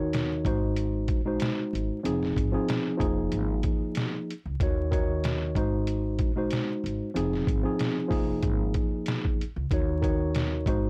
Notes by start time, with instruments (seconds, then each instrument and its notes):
Already playing: upright bass D#2, tine electric piano D#3 D#4 F#4 C#5
0.13 snare, closed hi-hat
0.45 upright bass G#1, tine electric piano G#3 D#4 F#4 C5, kick, closed hi-hat
0.76 closed hi-hat
1.08 upright bass A#1, kick, closed hi-hat
1.25 tine electric piano G#3 D#4 F#4 C5
1.40 snare, closed hi-hat
1.73 upright bass G#1, closed hi-hat
2.03 upright bass F1, tine electric piano F3 C4 D#4 G#4, closed hi-hat
2.23 snare
2.36 upright bass G#1, kick, closed hi-hat
2.52 tine electric piano F3 C4 D#4 G#4
2.69 snare, closed hi-hat
2.97 upright bass F1, tine electric piano F3 A#3 D#4 G#4, kick, closed hi-hat
3.32 upright bass G#1, closed hi-hat
3.63 kick, closed hi-hat
3.95 snare, closed hi-hat
4.30 closed hi-hat
4.46 upright bass C#2
4.60 upright bass D#2, tine electric piano D#3 D#4 F#4 C#5, kick, closed hi-hat
4.91 tine electric piano D#3 D#4 F#4 C#5, kick, closed hi-hat
5.24 snare, closed hi-hat
5.55 upright bass G#1, tine electric piano G#3 D#4 F#4 C5, kick, closed hi-hat
5.87 closed hi-hat
6.19 upright bass A#1, kick, closed hi-hat
6.36 tine electric piano G#3 D#4 F#4 C5
6.50 snare, closed hi-hat
6.84 upright bass G#1, closed hi-hat
7.14 upright bass F1, tine electric piano F3 C4 D#4 G#4, closed hi-hat
7.33 snare
7.47 upright bass G#1, kick, closed hi-hat
7.63 tine electric piano F3 C4 D#4 G#4
7.79 snare, closed hi-hat
8.08 upright bass F1, tine electric piano F3 A#3 D#4 G#4, kick, open hi-hat
8.42 upright bass G#1, kick, closed hi-hat
8.74 kick, closed hi-hat
9.06 snare, closed hi-hat
9.25 kick
9.41 closed hi-hat
9.56 upright bass C#2
9.71 upright bass D#2, tine electric piano D#3 D#4 F#4 C#5, kick, closed hi-hat
10.02 tine electric piano D#3 D#4 F#4 C#5, kick, closed hi-hat
10.35 snare, closed hi-hat
10.66 upright bass G#1, tine electric piano G#3 D#4 F#4 C5, kick, closed hi-hat